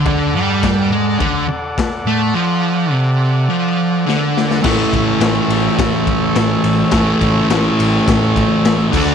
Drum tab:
CC |x---x---x---x---|----------------|x---------------|--------------x-|
RD |----------------|----------------|--x-x-x-x-x-x-x-|x-x-x-x-x-x-x---|
SD |----o-------o---|------------o-oo|o---o---o---o---|o---o---o---o---|
BD |o---o---o---o---|----------------|o-o-----o-o-----|o-o-----o-o---o-|